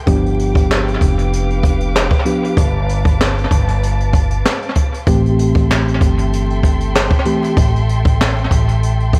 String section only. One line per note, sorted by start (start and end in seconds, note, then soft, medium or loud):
0.00 2.53 G5 medium
0.07 5.03 B4 medium
0.07 5.03 F5 medium
0.07 5.03 D6 loud
2.57 5.04 A5 medium
5.07 9.20 A4 medium
5.07 9.20 E5 medium
5.07 9.20 G5 medium
5.07 9.20 C6 medium